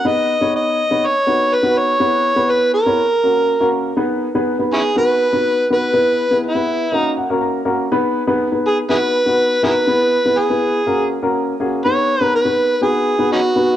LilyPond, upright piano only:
\new Staff \with { instrumentName = "Upright piano" } { \time 4/4 \key gis \minor \tempo 4 = 122 << { r1 | r1 | r1 | r2 r8 fis''8 ais''4 |
r1 | r1 | r1 | } \\ { <b dis' gis' b'>8 r16 <b dis' gis' cis''>8. r16 <b dis' gis' cis''>16 r8 <b dis' fis' b'>8 r16 <b dis' fis' b'>8 r16 | <b e' gis' b'>8 r16 <b e' gis' b'>8. r16 <b e' gis' cis''>16 r8 <ais cis' fis' ais'>8 r16 <ais cis' fis' ais'>8 r16 | <b dis' gis' b'>8 r16 <b dis' gis' b'>8 <b dis' gis' b'>8 r16 <b dis' fis' b'>8 r16 <b dis' fis' b'>8 r16 <b dis' fis' b'>8 | <b e' gis' b'>8 r16 <b e' gis' b'>8 <b e' gis' b'>8 r16 <ais cis' fis' ais'>8 r16 <ais cis' fis' ais'>8 r16 <ais cis' fis' ais'>8 |
<b dis' gis' b'>8 r16 <b dis' gis' b'>8 <b dis' gis' b'>8 r16 <b dis' fis' b'>8 r16 <b dis' fis' b'>8 r16 <b dis' fis' ais'>8 | <b e' gis' b'>8 r16 <b e' gis' b'>8 <b e' gis' b'>8 r16 <ais cis' fis' ais'>8 r16 <ais cis' fis' ais'>8 r16 <ais cis' fis' gis'>8 | <b dis' gis' b'>8 r16 <b dis' gis' ais'>8 <b dis' gis' b'>8 r16 <b dis' fis' b'>8 r16 <b dis' fis' b'>8 r16 <b dis' fis' b'>8 | } >> }